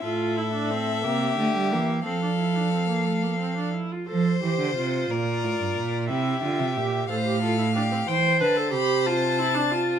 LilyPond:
<<
  \new Staff \with { instrumentName = "Violin" } { \time 6/8 \key f \major \tempo 4. = 60 e''2. | f''2~ f''8 r8 | c''4. d''4. | e''4. f''4. |
g''8 a''8 b''8 a''4. | }
  \new Staff \with { instrumentName = "Violin" } { \time 6/8 \key f \major a'4. g'4. | a'2~ a'8 r8 | c''4. bes'4. | g'4. c''8 a'8 g'8 |
c''2. | }
  \new Staff \with { instrumentName = "Viola" } { \time 6/8 \key f \major f'8 e'16 d'16 c'8 bes8 a16 g16 bes8 | c'16 d'16 e'16 d'16 c'16 bes16 a16 bes16 c'16 d'16 e'16 f'16 | a'8 g'8 f'2 | e'8 f'8 g'8 a'16 g'16 f'16 e'16 d'16 c'16 |
c''8 b'16 a'16 g'8 f'8 e'16 d'16 f'8 | }
  \new Staff \with { instrumentName = "Cello" } { \clef bass \time 6/8 \key f \major a,4. c8 d8 e8 | f2~ f8 r8 | f8 e16 d16 c8 bes,8 a,16 g,16 bes,8 | c8 d16 c16 bes,8 a,4. |
e8 d8 c2 | }
>>